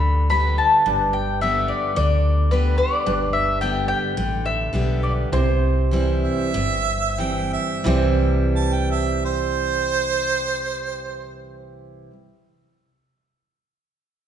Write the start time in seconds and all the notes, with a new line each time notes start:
Already playing: D2 D3 D4 G4 B4 B5
0.30 D3 G3 B3 G4 B5
0.58 A5
0.86 G1 G2 D4 G4 B4
1.13 G5
1.41 D3 G3 B3 G4 E5
1.68 D5
1.96 D2 D3 D5
2.51 D3 G3 B3 G4 B4
2.78 D5
3.06 G1 G2 D4 G4 B4
3.33 E5
3.61 D3 G3 B3 G4 G5
3.88 G5
4.17 A1 D3
4.46 E5
4.73 B1 D3 G3 B3 G4
5.03 D5
5.32 C2 C3 E4 G4 C5
5.91 E3 G3 C4 E4
6.24 E5
6.54 G1 G2
7.18 E3 G3 C4 E4 G5
7.53 E5
7.84 C2 C3 E3 G3 C4 E4 G4
7.88 C5
8.56 A5
8.73 G5
8.91 E5
9.25 C5